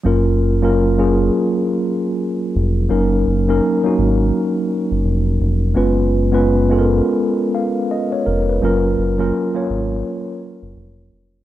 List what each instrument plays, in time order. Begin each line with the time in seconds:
0.04 analog synth bass F#1, tine electric piano F#3 A#3 C#4 F4 A#4
0.62 tine electric piano F#3 A#3 C#4 F4 A#4
0.98 tine electric piano F#3 A#3 C#4 F4 G#4
2.56 analog synth bass F1
2.89 analog synth bass F#1, tine electric piano F#3 A#3 C#4 D#4 A#4
3.27 analog synth bass F#1
3.48 tine electric piano F#3 A#3 C#4 D#4 A#4
3.83 tine electric piano F#3 A#3 C#4 D#4 F#4
3.98 analog synth bass G#1
4.91 analog synth bass F#1
5.05 analog synth bass F1
5.41 analog synth bass F1
5.74 analog synth bass F#1, tine electric piano G#3 B3 C#4 F4 B4
6.32 tine electric piano G#3 B3 C#4 F4 B4
6.70 tine electric piano G#3 B3 C#4 F4 A4
6.79 tine electric piano A#4
7.55 tine electric piano F5
7.91 tine electric piano D#5
8.12 tine electric piano C#5
8.26 analog synth bass F1, tine electric piano A#4
8.49 tine electric piano B4
8.62 analog synth bass F#1, tine electric piano F#3 A#3 C#4 F4 A#4
8.98 analog synth bass F#1
9.18 tine electric piano F#3 A#3 C#4 F4 A#4
9.54 tine electric piano F#3 A#3 C#4 F4 C#5
9.70 analog synth bass G#1
10.62 analog synth bass F#1
10.76 analog synth bass F1
11.12 analog synth bass F1